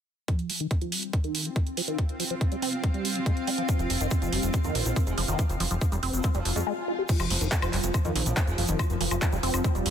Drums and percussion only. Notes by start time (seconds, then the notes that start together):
0.28 kick, closed hi-hat
0.39 closed hi-hat
0.50 open hi-hat
0.60 closed hi-hat
0.71 kick, closed hi-hat
0.81 closed hi-hat
0.92 open hi-hat
1.03 closed hi-hat
1.13 kick, closed hi-hat
1.24 closed hi-hat
1.35 open hi-hat
1.45 closed hi-hat
1.56 kick, closed hi-hat
1.67 closed hi-hat
1.77 open hi-hat
1.88 closed hi-hat
1.98 kick, closed hi-hat
2.09 closed hi-hat
2.20 open hi-hat
2.30 closed hi-hat
2.41 kick, closed hi-hat
2.52 closed hi-hat
2.62 open hi-hat
2.84 kick, closed hi-hat
2.94 closed hi-hat
3.05 open hi-hat
3.15 closed hi-hat
3.26 kick, closed hi-hat
3.37 closed hi-hat
3.47 open hi-hat
3.58 closed hi-hat
3.69 kick, closed hi-hat, shaker
3.79 closed hi-hat, shaker
3.90 open hi-hat
4.00 closed hi-hat, shaker
4.11 kick, closed hi-hat, shaker
4.22 closed hi-hat, shaker
4.33 open hi-hat
4.43 closed hi-hat, shaker
4.53 kick, closed hi-hat, shaker
4.64 closed hi-hat, shaker
4.75 open hi-hat
4.86 closed hi-hat, shaker
4.96 kick, closed hi-hat, shaker
5.07 closed hi-hat, shaker
5.18 open hi-hat
5.28 shaker
5.39 kick, closed hi-hat, shaker
5.50 closed hi-hat, shaker
5.60 open hi-hat
5.71 closed hi-hat, shaker
5.81 kick, closed hi-hat, shaker
5.92 closed hi-hat, shaker
6.03 open hi-hat
6.13 closed hi-hat, shaker
6.23 kick, closed hi-hat, shaker
6.34 closed hi-hat, shaker
6.45 open hi-hat
6.56 shaker
7.09 kick, closed hi-hat, crash, shaker
7.19 closed hi-hat, high woodblock, shaker
7.30 open hi-hat
7.41 closed hi-hat, shaker
7.52 kick, clap, closed hi-hat, shaker
7.62 closed hi-hat, high woodblock, shaker
7.73 clap, open hi-hat
7.84 closed hi-hat, shaker
7.94 kick, closed hi-hat, high woodblock, shaker
8.05 closed hi-hat, shaker
8.16 open hi-hat
8.26 closed hi-hat, shaker
8.37 kick, clap, closed hi-hat, high woodblock, shaker
8.47 closed hi-hat, shaker
8.58 open hi-hat
8.68 closed hi-hat, shaker
8.79 kick, closed hi-hat, high woodblock, shaker
8.90 closed hi-hat, shaker
9.01 open hi-hat
9.11 closed hi-hat, high woodblock, shaker
9.22 kick, clap, closed hi-hat, shaker
9.32 closed hi-hat, shaker
9.43 open hi-hat
9.54 closed hi-hat, high woodblock, shaker
9.64 kick, closed hi-hat, shaker
9.75 closed hi-hat, shaker
9.86 open hi-hat